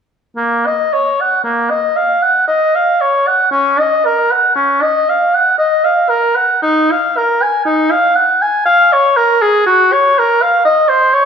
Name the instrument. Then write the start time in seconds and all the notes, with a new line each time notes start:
oboe
0.36 A#3
0.66 D#5
0.93 C#5
1.21 F#5
1.44 A#3
1.70 D#5
1.96 F5
2.22 F#5
2.48 D#5
2.75 F5
3.01 C#5
3.27 F#5
3.51 C#4
3.79 D#5
4.05 A#4
4.31 F#5
4.56 C#4
4.82 D#5
5.09 F5
5.34 F#5
5.58 D#5
5.84 F5
6.09 A#4
6.36 F#5
6.62 D#4
6.91 F5
7.17 A#4
7.42 G#5
7.65 D#4
7.91 F5
8.16 F#5
8.42 G#5
8.66 F5
8.93 C#5
9.17 A#4
9.42 G#4
9.66 F#4
9.92 C#5
10.18 A#4
10.42 F5
10.65 D#5
10.89 C5
11.13 C#5